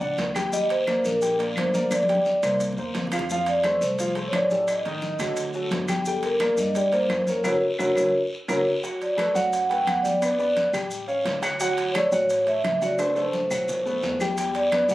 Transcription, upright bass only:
0.01 C#2
0.18 D#2
1.05 A#1
1.56 G1
2.43 C2
2.77 E2
2.95 F2
3.81 C2
4.32 A1
5.19 D2
5.71 G1
6.58 G2
7.10 F#2
7.45 F#1
7.79 F#1
7.97 F#1
8.48 F#1
9.35 F#2
9.87 E2
10.73 A1
11.25 D2
12.12 A1
12.64 F#1
13.51 B1
14.03 E2
14.89 B1

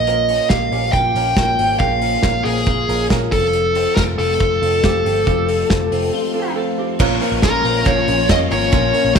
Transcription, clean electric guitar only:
Already playing: A#3
0.07 A#2
0.28 C#4
0.50 A#3
0.72 C#4
0.93 F4
1.15 C#4
1.37 A#3
1.58 C#4
1.80 A#2
2.03 C#4
2.24 A#3
2.45 C#4
2.67 F4
2.89 C#4
3.11 A#3
3.32 F2
3.54 F2
3.76 C4
3.98 A3
4.19 C4
4.41 F4
4.63 C4
4.84 A3
5.06 C4
5.27 F2
5.49 C4
5.70 A3
5.92 C4
6.13 F4
6.35 C4
6.57 A3
6.78 C4
7.00 A#2
7.21 A#3
7.43 C#4
7.64 F4
7.86 F3
8.08 C#4
8.30 F4
8.51 A#3
8.72 A#2
8.94 A#3

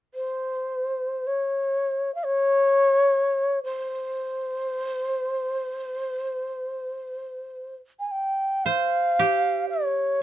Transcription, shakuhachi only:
0.14 C5
1.27 C#5
2.15 F5
2.25 C#5
3.64 C5
7.99 G#5
8.07 G5 G#5
8.65 F5
9.70 C#5

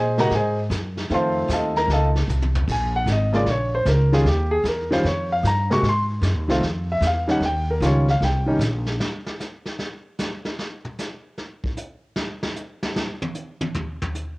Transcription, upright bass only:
Already playing: A#2
0.30 G#2
0.70 F#2
1.10 F2
1.48 D#2
1.88 C#2
2.28 C2
2.68 A#1
3.06 G#1
3.46 A#1
3.85 C#2
4.24 D#2
4.63 E2
5.04 F2
5.43 G2
5.82 G#2
6.21 F#2
6.35 D#2
6.48 C2
6.60 F2
7.01 E2
7.40 D#2
7.80 C#2
8.21 C2
8.59 A#1

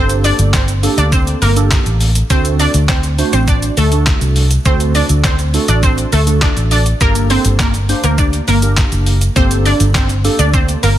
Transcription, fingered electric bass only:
Already playing: G1
0.39 G1
0.98 D2
1.42 G1
1.86 A1
2.30 D2
2.74 D2
3.33 A1
3.77 D2
4.21 C2
4.65 D2
5.10 D2
5.68 A1
6.13 D2
6.57 A1
7.01 G1
7.45 G1
8.04 D2
8.48 G1
8.92 F#1
9.36 G1
9.80 G1
10.39 D2
10.83 G1

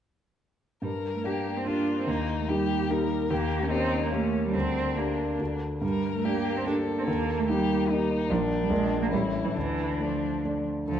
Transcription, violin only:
0.83 A#4
1.26 G4
1.68 F4
2.08 D#4
2.49 G4
2.91 A#4
3.31 G4
3.71 D#4
4.13 C#4
4.54 D4
5.82 A#4
6.25 G4
6.65 A4
7.49 G4
7.90 D#4
8.31 D4
9.11 E4
9.55 D4
10.88 A4

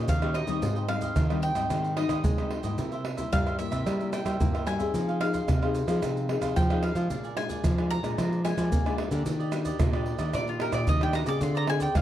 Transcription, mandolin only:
0.09 F5
0.35 D#5
0.89 F5
1.43 G5
1.97 D#5
3.33 F5
3.59 E5
4.13 G5
4.67 G#5
5.21 F5
6.56 G5
6.83 F5
7.37 G#5
7.91 A#5
8.45 G#5
10.35 D5
10.49 F4
10.61 A#4
10.74 D5
10.89 D#5
11.03 G5
11.15 A#5
11.28 D6
11.43 C6
11.57 A#5
11.70 G#5
11.82 G5
11.97 F5

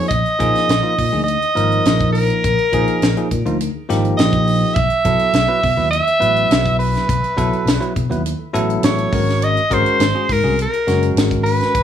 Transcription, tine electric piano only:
0.39 F3 A#3 D#4 G#4
0.82 F3 A#3 D#4 F4
1.12 F3 A#3 D#4 G#4
1.28 D#4 G#4
1.41 D#4 G4
1.55 F3 A#3 D#4 A#4
2.73 F3 A#3 D#4 G#4
3.17 F3 A#3 D#4 G#4
3.46 F3 A#3 D#4 F4
3.75 D#4 G#4
3.89 F3 A#3 D#4 G4
5.05 F#3 B3 E4 A4
5.48 F#3 B3 E4 B4
5.77 F#3 B3 E4 B4
5.91 E4 F#4
6.06 E4 A4
6.20 F#3 B3 E4 B4
7.37 F#3 B3 E4 A4
7.80 F#3 B3 E4 B4
7.95 E4 G#4
8.10 F#3 B3 E4 B4
8.25 E4 A4
8.38 E4 A4
8.53 F#3 B3 E4 A4
9.13 G#3 C#4 F#4 A#4
9.70 G#3 C#4 F#4 A#4
10.14 G#3 C#4 F#4 G#4
10.43 G#3 C#4 F#4 G#4
10.73 F#4 G#4
10.87 G#3 C#4 F#4 A#4

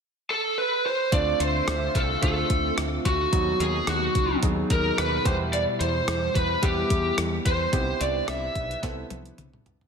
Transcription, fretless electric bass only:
1.12 D2
1.40 D2
1.67 D2
1.95 C2
2.22 D2
2.50 D2
2.77 D2
3.06 D2
3.33 D#2
3.60 D#2
3.87 D#2
4.15 C#2
4.43 D#2
4.70 D#2
4.98 D#2
5.26 E2
5.80 E2
6.08 E2
6.35 E2
6.63 E2
6.90 E2
7.18 E2
7.45 E2
7.73 C2
8.01 C2
8.28 C2
8.55 B1
8.83 C2
9.11 C2
9.38 C2
9.66 C2

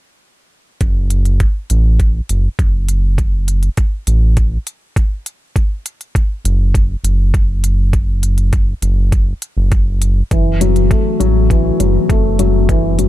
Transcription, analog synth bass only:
0.81 F#1
1.70 A1
2.29 F#1
2.59 F#1
4.07 A1
6.45 F#1
7.04 F#1
8.82 F#1
9.57 F#1
10.31 F#1
11.20 A1
11.80 F#1
12.09 F#1

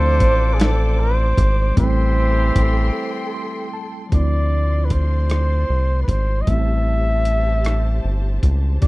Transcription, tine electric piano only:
Already playing: F3 A3 C4 E4
1.74 G3 A3 C4
1.80 E4
3.34 C6
3.73 A5
4.10 F3 A3
4.14 C4 E4
6.45 G3 A3 C4
6.51 E4
8.80 E3 A3 C4

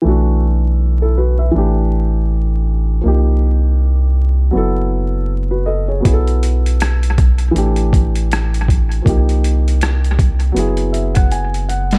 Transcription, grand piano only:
0.02 E3 A3
0.07 D4 F#4
1.02 E4 A4
1.18 F#4 B4
1.39 B4 E5
1.51 E3 A3
1.56 D4 G4
3.01 F3 A#3
3.06 D#4 G4
4.51 F#3 B3
4.56 E4 A4
5.51 F#4 B4
5.66 A4 D#5
5.88 G#4 C#5
6.00 F#3 B3
6.05 E4 G#4
6.13 A4
7.51 E3 A3
7.56 D4 G4
9.02 F3 A#3
9.07 D#4 G4
10.52 F#3 B3
10.57 E4 G#4
10.92 E5
11.15 F#5
11.31 G#5
11.69 F#5

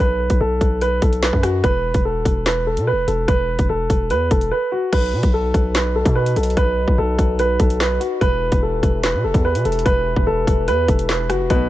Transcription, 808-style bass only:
0.00 B1
0.30 B1
0.41 B1
0.61 B1
1.02 B1
1.33 F#2
1.64 E1
1.94 E1
2.15 D#1
2.25 E1
2.77 B2
2.92 E1
3.08 E1
3.28 E1
3.59 E1
3.69 E1
3.90 E1
4.10 E2
4.31 E1
4.93 B1
5.13 B2
5.23 B1
5.54 B1
6.05 B2
6.36 B1
6.57 B1
6.88 B1
6.98 B1
7.19 B1
7.60 B1
8.21 E1
8.52 E1
8.73 D#1
8.83 E1
9.14 B2
9.24 E1
9.34 E2
9.55 B2
9.65 E1
9.86 E1
10.16 E1
10.27 E1
10.47 E1
10.68 E2
10.88 E1
11.30 F#1
11.40 E1
11.50 B1

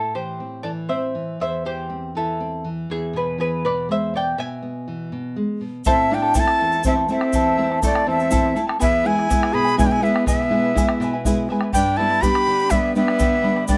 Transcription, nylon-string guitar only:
Already playing: A2
0.15 E3
0.40 C4
0.64 E3
0.89 C4
1.15 E3
1.40 E2
1.65 E3
1.90 C4
2.15 E3
2.40 C4
2.65 E3
2.90 E2
3.13 B2
3.38 E3
3.65 B2
3.89 G#3
4.14 B2
4.38 B2
4.62 B3
4.88 E3
5.12 B2
5.36 G#3
5.61 B2
5.86 A2
6.11 A3 C4 E4
6.36 A3 C4 E4
6.61 E2
6.86 A3 C4 E4
7.08 A3 C4 E4
7.33 E2
7.58 A3 C4 E4
7.82 A3 C4 E4
8.07 E2
8.30 A3 C4 E4
8.56 A3 C4 E4
8.81 E2
9.04 G#3 B3 E4
9.29 G#3 B3 E4
9.54 B2
9.77 G#3 B3 E4
10.02 G#3 B3 E4
10.26 B2
10.49 G#3 B3 E4
10.74 G#3 B3 E4
11.00 B2
11.25 G#3 B3 E4
11.50 G#3 B3 E4
11.75 G2
11.99 G3 B3 D4
12.23 G3 B3 D4
12.47 D3
12.71 G3 B3 D4
12.95 G3 B3 D4
13.19 D3
13.43 G3 B3 D4
13.68 G3 B3 D4

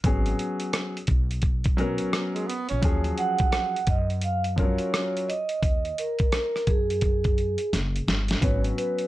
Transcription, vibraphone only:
3.19 F#5
3.89 D#5
4.24 F5
4.58 C#5
5.29 D#5
5.99 A#4
6.34 A#4
6.69 G#4
8.43 C#5
8.78 B4

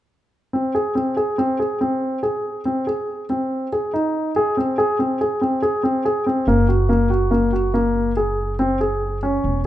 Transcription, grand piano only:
0.53 C4
0.75 G#4
0.95 C4
1.17 G#4
1.38 C4
1.59 G#4
1.81 C4
2.23 G#4
2.65 C4
2.87 G#4
3.30 C4
3.72 G#4
3.94 D#4
4.36 G#4
4.57 C4
4.78 G#4
4.99 C4
5.21 G#4
5.41 C4
5.62 G#4
5.83 C4
6.05 G#4
6.26 C4
6.48 A#3
6.68 F#4
6.89 A#3
7.10 F#4
7.31 A#3
7.53 F#4
7.74 A#3
8.17 G#4
8.59 C4
8.81 G#4
9.23 C#4

